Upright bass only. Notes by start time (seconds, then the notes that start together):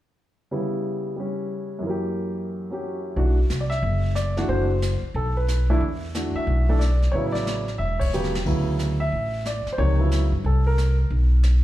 3.16 B1
3.50 C2
3.83 F#1
4.48 F#1
5.02 muted upright bass stroke
5.14 B1
5.80 E2
6.35 muted upright bass stroke
6.47 B1
7.13 A1
7.79 E1
8.46 D2
9.12 A1
9.66 muted upright bass stroke
9.78 C#2
10.32 G2
10.44 C2
11.10 B1